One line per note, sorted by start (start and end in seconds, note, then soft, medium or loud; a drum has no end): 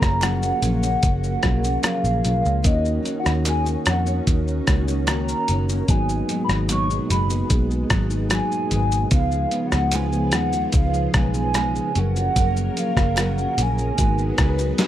0.00 0.51 F#1 loud
0.00 2.62 C#3 medium
0.00 2.60 F3 medium
0.00 2.62 A#3 medium
0.00 0.21 A#3 soft
0.00 2.59 C#4 medium
0.00 0.21 C#4 medium
0.00 0.22 F4 medium
0.00 2.61 G#4 medium
0.00 2.62 A#4 medium
0.00 0.24 A#5 loud
0.00 kick medium
0.00 cross-stick medium
0.00 shaker soft
0.21 0.42 F#3 medium
0.21 0.42 A#3 medium
0.21 0.41 C#4 medium
0.21 0.40 F4 medium
0.21 1.88 F#5 loud
0.21 cross-stick medium
0.21 clap medium
0.21 closed hi-hat medium
0.21 shaker medium
0.41 0.61 A#3 soft
0.41 0.62 C#4 soft
0.41 0.62 F4 medium
0.41 shaker soft
0.61 0.95 A#1 medium
0.61 0.82 F#3 medium
0.61 0.83 A#3 medium
0.61 0.81 C#4 medium
0.61 0.84 F4 medium
0.61 closed hi-hat medium
0.61 shaker medium
0.83 1.42 A#3 soft
0.83 1.43 C#4 medium
0.83 shaker medium
1.03 1.36 F#1 medium
1.03 kick loud
1.03 closed hi-hat medium
1.03 shaker medium
1.24 shaker soft
1.42 1.76 B1 medium
1.42 1.63 F#3 medium
1.42 1.63 A#3 medium
1.42 1.63 C#4 medium
1.42 1.61 F4 medium
1.42 kick medium
1.42 cross-stick medium
1.42 closed hi-hat soft
1.42 shaker medium
1.62 1.81 A#3 soft
1.62 1.83 C#4 medium
1.62 1.83 F4 medium
1.62 shaker medium
1.82 2.21 F#3 medium
1.82 2.23 A#3 medium
1.82 2.24 C#4 medium
1.82 2.24 F4 medium
1.82 2.67 F5 loud
1.82 cross-stick medium
1.82 clap medium
1.82 closed hi-hat medium
1.82 shaker medium
2.04 2.20 A#1 medium
2.04 shaker medium
2.23 2.41 B1 medium
2.23 2.44 F#3 medium
2.23 2.44 A#3 medium
2.23 2.42 C#4 medium
2.23 2.41 F4 medium
2.23 closed hi-hat medium
2.23 shaker medium
2.42 2.61 C#2 medium
2.42 2.62 A#3 soft
2.42 2.63 C#4 soft
2.42 2.64 F4 medium
2.42 shaker medium
2.62 2.97 D#2 loud
2.62 3.01 D#3 medium
2.62 3.02 A#3 medium
2.62 5.84 C#4 medium
2.62 3.03 C#4 medium
2.62 5.86 C#4 medium
2.62 5.84 D#4 medium
2.62 3.04 F#4 medium
2.62 5.85 F#4 medium
2.62 3.19 D#5 loud
2.62 kick loud
2.62 closed hi-hat medium
2.62 shaker medium
2.67 5.86 D#3 medium
2.67 5.86 A#4 medium
2.85 shaker medium
3.03 3.24 D#3 medium
3.03 3.25 A#3 medium
3.03 3.24 C#4 medium
3.03 3.22 F#4 medium
3.03 closed hi-hat soft
3.03 shaker soft
3.20 3.45 F#4 medium
3.20 3.32 F#5 medium
3.25 3.75 D#2 loud
3.25 3.44 A#3 soft
3.25 3.45 C#4 soft
3.25 cross-stick medium
3.25 shaker soft
3.44 3.65 D#3 medium
3.44 3.66 A#3 medium
3.44 3.64 C#4 medium
3.44 3.63 F#4 medium
3.44 3.85 G#5 loud
3.44 clap medium
3.44 closed hi-hat medium
3.44 shaker medium
3.64 3.85 A#3 soft
3.64 3.86 C#4 soft
3.64 3.85 F#4 medium
3.64 shaker soft
3.85 4.19 F2 medium
3.85 4.06 D#3 medium
3.85 4.07 A#3 medium
3.85 4.06 C#4 medium
3.85 4.04 F#4 medium
3.85 4.25 F#5 medium
3.85 cross-stick loud
3.85 closed hi-hat medium
3.85 shaker medium
4.05 4.67 A#3 soft
4.05 4.68 C#4 medium
4.05 4.67 F#4 medium
4.05 shaker medium
4.27 4.59 D#2 medium
4.27 kick loud
4.27 closed hi-hat medium
4.27 shaker medium
4.48 shaker soft
4.67 5.32 C#2 medium
4.67 4.87 D#3 medium
4.67 4.88 A#3 medium
4.67 4.88 C#4 medium
4.67 4.86 F#4 medium
4.67 kick medium
4.67 cross-stick medium
4.67 closed hi-hat soft
4.67 shaker medium
4.87 5.08 A#3 soft
4.87 5.08 C#4 medium
4.87 5.07 F#4 medium
4.87 shaker medium
5.07 5.47 D#3 medium
5.07 5.47 A#3 medium
5.07 5.49 C#4 medium
5.07 5.49 F#4 medium
5.07 5.91 A#5 loud
5.07 cross-stick medium
5.07 clap medium
5.07 closed hi-hat medium
5.07 shaker medium
5.29 shaker medium
5.48 5.81 F#1 medium
5.48 5.68 D#3 medium
5.48 5.69 A#3 medium
5.48 5.69 C#4 medium
5.48 5.68 F#4 medium
5.48 closed hi-hat medium
5.48 shaker medium
5.69 5.90 A#3 soft
5.69 5.90 C#4 soft
5.69 5.89 F#4 medium
5.69 shaker medium
5.85 6.21 G#1 loud
5.85 6.27 G#2 medium
5.85 9.09 B2 medium
5.85 9.09 G#3 medium
5.85 9.07 B3 medium
5.85 9.08 D#4 medium
5.85 kick loud
5.85 closed hi-hat medium
5.85 shaker medium
5.89 6.29 F#3 medium
5.89 9.09 A#3 medium
5.89 6.30 B3 medium
5.89 6.30 D#4 medium
5.89 9.09 F#4 medium
5.89 6.43 G#5 loud
6.09 shaker medium
6.29 6.49 G#2 medium
6.29 6.50 F#3 medium
6.29 6.50 B3 medium
6.29 6.48 D#4 medium
6.29 closed hi-hat soft
6.29 shaker medium
6.45 6.56 B5 loud
6.49 6.98 G#1 loud
6.49 6.69 F#3 soft
6.49 6.70 B3 soft
6.49 6.69 D#4 medium
6.49 cross-stick medium
6.49 shaker soft
6.69 6.90 G#2 medium
6.69 6.90 F#3 medium
6.69 6.90 B3 medium
6.69 6.89 D#4 medium
6.69 7.08 C#6 loud
6.69 clap medium
6.69 closed hi-hat medium
6.69 shaker medium
6.90 7.09 F#3 soft
6.90 7.09 B3 soft
6.90 7.10 D#4 medium
6.90 shaker medium
7.09 7.43 F#1 loud
7.09 7.30 G#2 medium
7.09 7.30 F#3 medium
7.09 7.30 B3 medium
7.09 7.28 D#4 medium
7.09 7.48 B5 medium
7.09 closed hi-hat medium
7.09 shaker medium
7.29 7.90 F#3 soft
7.29 7.91 B3 medium
7.29 7.90 D#4 medium
7.29 shaker medium
7.50 7.83 B1 loud
7.50 kick loud
7.50 closed hi-hat medium
7.50 shaker medium
7.71 shaker soft
7.90 8.39 G#1 loud
7.90 8.11 G#2 medium
7.90 8.11 F#3 medium
7.90 8.10 B3 medium
7.90 8.09 D#4 medium
7.90 kick medium
7.90 cross-stick medium
7.90 closed hi-hat medium
7.90 shaker medium
8.10 8.30 F#3 soft
8.10 8.31 B3 soft
8.10 8.31 D#4 medium
8.10 shaker medium
8.30 8.69 G#2 medium
8.30 8.70 F#3 medium
8.30 8.71 B3 medium
8.30 8.72 D#4 loud
8.30 9.09 G#5 loud
8.30 cross-stick medium
8.30 clap medium
8.30 closed hi-hat medium
8.30 shaker medium
8.52 shaker medium
8.70 9.04 G#1 medium
8.70 9.11 G#2 medium
8.70 9.12 F#3 medium
8.70 9.11 B3 medium
8.70 9.13 D#4 medium
8.70 closed hi-hat medium
8.70 shaker medium
8.92 shaker medium
9.09 9.44 C#2 loud
9.09 11.92 C#3 medium
9.09 9.50 C#3 medium
9.09 11.92 F3 medium
9.09 11.91 F3 medium
9.09 9.51 G#3 medium
9.09 11.90 B3 medium
9.09 11.92 B3 medium
9.09 9.52 B3 medium
9.09 11.91 D#4 medium
9.09 kick loud
9.09 closed hi-hat medium
9.09 shaker medium
9.13 9.53 F4 medium
9.13 11.92 G#4 medium
9.13 9.68 F5 loud
9.32 shaker medium
9.51 9.72 C#3 medium
9.51 9.73 G#3 medium
9.51 9.72 B3 medium
9.51 9.70 F4 medium
9.51 closed hi-hat soft
9.51 shaker medium
9.67 9.96 F#5 loud
9.71 10.34 C#2 loud
9.71 9.93 G#3 soft
9.71 9.93 B3 soft
9.71 9.92 F4 medium
9.71 cross-stick medium
9.71 shaker soft
9.92 10.13 C#3 medium
9.92 10.14 G#3 medium
9.92 10.13 B3 medium
9.92 10.11 F4 loud
9.92 10.36 G#5 loud
9.92 clap medium
9.92 closed hi-hat medium
9.92 shaker medium
10.12 10.33 G#3 soft
10.12 10.34 B3 medium
10.12 10.33 F4 medium
10.12 shaker medium
10.32 10.66 D#2 medium
10.32 10.53 C#3 medium
10.32 10.54 G#3 medium
10.32 10.54 B3 medium
10.32 10.75 F#5 loud
10.32 cross-stick medium
10.32 closed hi-hat medium
10.32 shaker medium
10.36 10.52 F4 medium
10.53 11.15 G#3 medium
10.53 11.15 B3 medium
10.53 11.14 F4 medium
10.53 shaker medium
10.72 11.06 C#2 loud
10.72 11.13 F5 medium
10.72 kick loud
10.72 closed hi-hat medium
10.72 shaker medium
10.94 shaker soft
11.14 11.79 B1 loud
11.14 11.35 C#3 medium
11.14 11.36 G#3 medium
11.14 11.35 B3 medium
11.14 12.00 G#5 loud
11.14 kick medium
11.14 cross-stick medium
11.14 closed hi-hat medium
11.14 shaker medium
11.18 11.33 F4 medium
11.34 11.54 G#3 medium
11.34 11.55 B3 medium
11.34 11.55 F4 medium
11.34 shaker medium
11.54 11.95 C#3 medium
11.54 11.94 G#3 medium
11.54 11.96 B3 medium
11.54 11.96 F4 medium
11.54 cross-stick medium
11.54 clap medium
11.54 closed hi-hat medium
11.54 shaker medium
11.76 shaker medium
11.93 12.28 F#1 loud
11.93 13.96 C#3 medium
11.93 13.94 F3 medium
11.93 12.15 F#3 medium
11.93 13.93 A#3 medium
11.93 13.96 A#3 medium
11.93 13.93 C#4 medium
11.93 12.16 C#4 medium
11.93 12.16 F4 medium
11.93 13.96 A#4 medium
11.93 closed hi-hat medium
11.93 shaker medium
11.98 13.95 G#4 medium
11.98 12.15 A#4 medium
11.98 12.80 F#5 loud
12.16 12.36 C#4 soft
12.16 12.37 F4 soft
12.16 12.36 A#4 medium
12.16 shaker medium
12.36 12.69 F#1 loud
12.36 12.75 F#3 medium
12.36 12.76 C#4 medium
12.36 12.77 A#4 loud
12.36 kick loud
12.36 closed hi-hat medium
12.36 shaker medium
12.57 shaker medium
12.77 12.97 F#3 medium
12.77 12.97 C#4 medium
12.77 12.97 F4 medium
12.77 12.96 A#4 medium
12.77 13.21 F5 medium
12.77 closed hi-hat soft
12.77 shaker soft
12.97 13.45 F#1 loud
12.97 13.17 C#4 soft
12.97 13.18 F4 medium
12.97 13.17 A#4 medium
12.97 kick medium
12.97 cross-stick medium
12.97 shaker soft
13.17 13.37 F#3 medium
13.17 13.38 C#4 medium
13.17 13.38 F4 medium
13.17 13.36 A#4 medium
13.17 13.63 F#5 medium
13.17 cross-stick medium
13.17 clap medium
13.17 closed hi-hat medium
13.17 shaker medium
13.37 13.57 C#4 soft
13.37 13.58 F4 medium
13.37 13.58 A#4 medium
13.37 shaker soft
13.57 13.90 A#1 loud
13.57 13.78 F#3 medium
13.57 13.78 C#4 medium
13.57 13.78 F4 medium
13.57 13.76 A#4 medium
13.57 closed hi-hat medium
13.57 shaker medium
13.62 14.81 G#5 loud
13.77 13.97 C#4 soft
13.77 13.98 F4 medium
13.77 13.98 A#4 medium
13.77 shaker medium
13.95 14.31 G#1 loud
13.95 14.36 G#3 medium
13.95 14.87 B3 medium
13.95 14.87 D#4 medium
13.95 14.37 D#4 medium
13.95 14.87 F#4 medium
13.95 14.38 F#4 medium
13.95 kick loud
13.95 closed hi-hat medium
13.95 shaker medium
13.99 14.87 F#3 medium
13.99 14.87 G#4 medium
13.99 14.87 A#4 medium
13.99 14.38 B4 medium
14.18 shaker soft
14.37 14.71 C#2 medium
14.37 14.58 G#3 medium
14.37 14.58 D#4 medium
14.37 14.57 F#4 medium
14.37 14.55 B4 medium
14.37 kick medium
14.37 cross-stick medium
14.37 closed hi-hat medium
14.37 shaker soft
14.57 14.77 D#4 medium
14.57 14.78 F#4 medium
14.57 14.78 B4 medium
14.57 shaker medium
14.78 14.87 G#3 medium
14.78 14.87 D#4 loud
14.78 14.87 F#4 loud
14.78 14.87 B4 medium
14.78 snare medium
14.78 clap medium
14.78 closed hi-hat medium
14.78 shaker medium